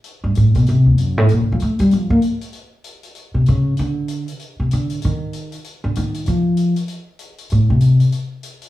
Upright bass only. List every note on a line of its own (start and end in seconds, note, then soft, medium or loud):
0.24 0.35 G2 medium
0.37 0.55 A2 medium
0.55 0.66 B2 medium
0.69 0.85 C3 medium
0.86 1.00 D#2 medium
1.00 1.18 F#2 medium
1.18 1.29 A2 medium
1.32 1.40 A#2 medium
1.41 1.50 D3 medium
1.52 1.61 F3 medium
1.62 1.79 A3 medium
1.80 1.91 G3 medium
1.93 2.10 F3 medium
2.10 2.17 A#3 loud
3.34 3.46 C3 medium
3.48 3.76 C#3 medium
3.79 4.25 D3 medium
4.60 4.71 C3 medium
4.73 5.01 D3 medium
5.05 5.50 D#3 medium
5.84 5.95 D3 medium
5.97 6.25 D#3 medium
6.28 6.73 F3 medium
7.52 7.69 A2 medium
7.70 7.98 C3 medium